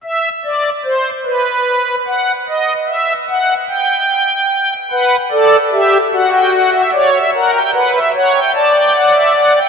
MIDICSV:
0, 0, Header, 1, 2, 480
1, 0, Start_track
1, 0, Tempo, 810811
1, 18, Time_signature, 6, 3, 24, 8
1, 5735, End_track
2, 0, Start_track
2, 0, Title_t, "Pipe organ"
2, 0, Program_c, 0, 19
2, 21, Note_on_c, 0, 76, 61
2, 171, Note_off_c, 0, 76, 0
2, 265, Note_on_c, 0, 74, 64
2, 413, Note_off_c, 0, 74, 0
2, 501, Note_on_c, 0, 72, 66
2, 651, Note_off_c, 0, 72, 0
2, 740, Note_on_c, 0, 71, 56
2, 1156, Note_off_c, 0, 71, 0
2, 1222, Note_on_c, 0, 78, 56
2, 1372, Note_off_c, 0, 78, 0
2, 1469, Note_on_c, 0, 75, 58
2, 1616, Note_off_c, 0, 75, 0
2, 1703, Note_on_c, 0, 76, 61
2, 1852, Note_off_c, 0, 76, 0
2, 1945, Note_on_c, 0, 78, 67
2, 2094, Note_off_c, 0, 78, 0
2, 2181, Note_on_c, 0, 79, 66
2, 2802, Note_off_c, 0, 79, 0
2, 2907, Note_on_c, 0, 71, 71
2, 2908, Note_on_c, 0, 78, 57
2, 3055, Note_off_c, 0, 71, 0
2, 3056, Note_off_c, 0, 78, 0
2, 3145, Note_on_c, 0, 74, 52
2, 3146, Note_on_c, 0, 69, 67
2, 3294, Note_off_c, 0, 74, 0
2, 3295, Note_off_c, 0, 69, 0
2, 3388, Note_on_c, 0, 67, 78
2, 3390, Note_on_c, 0, 76, 62
2, 3536, Note_off_c, 0, 67, 0
2, 3537, Note_off_c, 0, 76, 0
2, 3626, Note_on_c, 0, 66, 69
2, 3626, Note_on_c, 0, 78, 57
2, 3728, Note_off_c, 0, 78, 0
2, 3748, Note_on_c, 0, 79, 50
2, 3849, Note_off_c, 0, 79, 0
2, 3862, Note_on_c, 0, 78, 60
2, 3966, Note_off_c, 0, 78, 0
2, 3983, Note_on_c, 0, 76, 53
2, 4036, Note_off_c, 0, 66, 0
2, 4086, Note_off_c, 0, 76, 0
2, 4097, Note_on_c, 0, 74, 59
2, 4100, Note_on_c, 0, 73, 72
2, 4202, Note_off_c, 0, 74, 0
2, 4218, Note_on_c, 0, 76, 59
2, 4249, Note_off_c, 0, 73, 0
2, 4323, Note_off_c, 0, 76, 0
2, 4343, Note_on_c, 0, 78, 53
2, 4344, Note_on_c, 0, 70, 67
2, 4445, Note_off_c, 0, 78, 0
2, 4459, Note_on_c, 0, 79, 59
2, 4492, Note_off_c, 0, 70, 0
2, 4563, Note_off_c, 0, 79, 0
2, 4579, Note_on_c, 0, 71, 78
2, 4579, Note_on_c, 0, 78, 62
2, 4682, Note_off_c, 0, 78, 0
2, 4699, Note_on_c, 0, 76, 57
2, 4728, Note_off_c, 0, 71, 0
2, 4802, Note_off_c, 0, 76, 0
2, 4822, Note_on_c, 0, 73, 76
2, 4824, Note_on_c, 0, 78, 74
2, 4925, Note_off_c, 0, 78, 0
2, 4937, Note_on_c, 0, 79, 68
2, 4970, Note_off_c, 0, 73, 0
2, 5041, Note_off_c, 0, 79, 0
2, 5058, Note_on_c, 0, 81, 72
2, 5060, Note_on_c, 0, 74, 79
2, 5161, Note_off_c, 0, 81, 0
2, 5181, Note_on_c, 0, 79, 61
2, 5283, Note_off_c, 0, 79, 0
2, 5298, Note_on_c, 0, 78, 65
2, 5401, Note_off_c, 0, 78, 0
2, 5414, Note_on_c, 0, 76, 60
2, 5518, Note_off_c, 0, 76, 0
2, 5535, Note_on_c, 0, 78, 61
2, 5639, Note_off_c, 0, 78, 0
2, 5654, Note_on_c, 0, 79, 55
2, 5676, Note_off_c, 0, 74, 0
2, 5735, Note_off_c, 0, 79, 0
2, 5735, End_track
0, 0, End_of_file